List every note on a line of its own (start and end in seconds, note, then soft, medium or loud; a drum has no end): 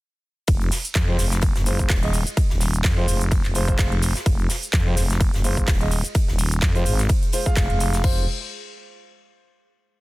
0.48 0.70 F1 loud
0.48 kick loud
0.48 closed hi-hat loud
0.48 closed hi-hat medium
0.48 ride medium
0.48 cabasa soft
0.61 closed hi-hat medium
0.72 snare soft
0.72 closed hi-hat medium
0.72 open hi-hat loud
0.72 cabasa medium
0.85 closed hi-hat medium
0.85 cabasa soft
0.95 1.17 F2 medium
0.95 kick loud
0.95 snare loud
0.95 clap loud
0.95 closed hi-hat medium
0.95 ride medium
0.95 cabasa soft
1.08 1.21 G#3 medium
1.08 1.21 F4 medium
1.08 1.21 C5 medium
1.19 1.54 F1 loud
1.19 snare medium
1.19 closed hi-hat medium
1.19 open hi-hat loud
1.19 cabasa medium
1.31 snare soft
1.31 closed hi-hat medium
1.31 cabasa soft
1.42 kick loud
1.42 closed hi-hat medium
1.42 ride medium
1.42 cabasa soft
1.56 1.88 F#1 loud
1.56 snare soft
1.56 closed hi-hat soft
1.66 1.89 G#3 medium
1.66 1.89 F4 medium
1.66 1.89 C5 medium
1.66 closed hi-hat medium
1.66 open hi-hat loud
1.66 cabasa medium
1.79 kick medium
1.79 closed hi-hat medium
1.79 cabasa soft
1.89 2.24 D#1 loud
1.89 kick loud
1.89 snare loud
1.89 clap loud
1.89 closed hi-hat medium
1.89 open hi-hat medium
1.89 ride medium
1.89 cabasa soft
2.03 2.16 G#3 medium
2.03 2.16 F4 medium
2.03 2.16 D#5 medium
2.03 closed hi-hat soft
2.13 closed hi-hat medium
2.13 open hi-hat loud
2.13 cabasa medium
2.27 closed hi-hat medium
2.27 cabasa soft
2.37 kick loud
2.37 closed hi-hat loud
2.37 closed hi-hat medium
2.37 ride medium
2.37 cabasa soft
2.50 2.83 D#1 medium
2.50 snare soft
2.60 snare soft
2.60 closed hi-hat medium
2.60 open hi-hat loud
2.60 cabasa medium
2.74 closed hi-hat medium
2.74 cabasa soft
2.84 3.06 F2 loud
2.84 kick loud
2.84 snare loud
2.84 clap loud
2.84 closed hi-hat medium
2.84 ride medium
2.84 cabasa soft
2.97 3.20 G#3 medium
2.97 3.20 F4 medium
2.97 3.20 C5 loud
3.08 3.43 F1 loud
3.08 closed hi-hat medium
3.08 open hi-hat loud
3.08 cabasa medium
3.21 closed hi-hat medium
3.21 cabasa soft
3.31 kick loud
3.31 closed hi-hat loud
3.31 closed hi-hat medium
3.31 ride medium
3.31 cabasa soft
3.45 3.77 F1 medium
3.45 clap soft
3.45 closed hi-hat soft
3.55 3.66 G#3 medium
3.55 3.66 F4 medium
3.55 3.66 C5 loud
3.55 closed hi-hat medium
3.55 open hi-hat loud
3.55 cabasa medium
3.68 3.91 G#3 loud
3.68 3.91 F4 medium
3.68 3.91 C5 loud
3.68 kick medium
3.68 cabasa soft
3.79 4.13 F1 loud
3.79 kick loud
3.79 snare loud
3.79 clap loud
3.79 closed hi-hat medium
3.79 ride medium
3.79 cabasa soft
3.92 closed hi-hat soft
4.02 closed hi-hat medium
4.02 open hi-hat loud
4.02 cabasa medium
4.16 snare soft
4.16 closed hi-hat medium
4.16 cabasa soft
4.26 4.48 F1 loud
4.26 kick loud
4.26 closed hi-hat medium
4.26 ride medium
4.26 cabasa soft
4.39 closed hi-hat soft
4.50 snare medium
4.50 closed hi-hat medium
4.50 open hi-hat loud
4.50 cabasa medium
4.63 closed hi-hat soft
4.63 cabasa soft
4.73 4.95 F2 medium
4.73 kick loud
4.73 snare loud
4.73 clap loud
4.73 closed hi-hat medium
4.73 ride medium
4.73 cabasa soft
4.86 4.99 G#3 medium
4.86 4.99 F4 medium
4.86 4.99 C5 medium
4.97 5.32 F1 loud
4.97 snare medium
4.97 closed hi-hat medium
4.97 open hi-hat loud
4.97 cabasa medium
5.10 snare soft
5.10 closed hi-hat medium
5.10 cabasa soft
5.21 kick loud
5.21 closed hi-hat medium
5.21 ride medium
5.21 cabasa soft
5.34 5.66 F#1 loud
5.34 snare medium
5.34 closed hi-hat soft
5.44 5.67 G#3 medium
5.44 5.67 F4 medium
5.44 5.67 C5 medium
5.44 closed hi-hat medium
5.44 open hi-hat loud
5.44 cabasa medium
5.57 kick medium
5.57 closed hi-hat medium
5.57 cabasa soft
5.68 6.02 D#1 loud
5.68 kick loud
5.68 snare loud
5.68 clap loud
5.68 closed hi-hat medium
5.68 open hi-hat medium
5.68 ride medium
5.68 cabasa soft
5.81 5.94 G#3 medium
5.81 5.94 F4 medium
5.81 5.94 D#5 medium
5.81 closed hi-hat soft
5.91 closed hi-hat medium
5.91 open hi-hat loud
5.91 cabasa medium
6.05 closed hi-hat medium
6.05 cabasa soft
6.15 kick loud
6.15 closed hi-hat loud
6.15 closed hi-hat medium
6.15 ride medium
6.15 cabasa soft
6.28 6.61 D#1 loud
6.28 snare soft
6.38 closed hi-hat medium
6.38 open hi-hat loud
6.38 cabasa medium
6.52 closed hi-hat soft
6.52 closed hi-hat medium
6.52 cabasa soft
6.62 6.84 F2 loud
6.62 kick loud
6.62 snare soft
6.62 clap loud
6.62 closed hi-hat medium
6.62 ride medium
6.62 cabasa soft
6.75 6.98 G#3 loud
6.75 6.98 F4 medium
6.75 6.98 C5 loud
6.75 closed hi-hat soft
6.75 closed hi-hat medium
6.85 7.08 G#1 loud
6.85 closed hi-hat soft
6.85 open hi-hat loud
6.85 cabasa medium
6.99 snare soft
6.99 closed hi-hat medium
6.99 cabasa soft
7.09 kick loud
7.09 closed hi-hat loud
7.09 closed hi-hat medium
7.09 ride medium
7.09 cabasa soft
7.23 closed hi-hat soft
7.33 7.44 G#3 medium
7.33 7.44 F4 medium
7.33 7.44 C5 medium
7.33 closed hi-hat medium
7.33 open hi-hat loud
7.33 cabasa medium
7.46 8.03 G#3 loud
7.46 8.03 F4 medium
7.46 8.03 F5 loud
7.46 kick medium
7.46 closed hi-hat medium
7.46 cabasa soft
7.56 7.68 F1 loud
7.56 kick loud
7.56 snare loud
7.56 clap loud
7.56 closed hi-hat medium
7.56 ride medium
7.56 cabasa soft
7.70 8.02 F1 loud
7.70 closed hi-hat soft
7.80 closed hi-hat medium
7.80 open hi-hat loud
7.80 cabasa medium
7.93 snare soft
7.93 closed hi-hat medium
7.93 cabasa soft
8.04 8.26 F1 loud
8.04 8.22 G#3 medium
8.04 8.22 F4 medium
8.04 8.22 C5 loud
8.04 kick loud
8.04 crash medium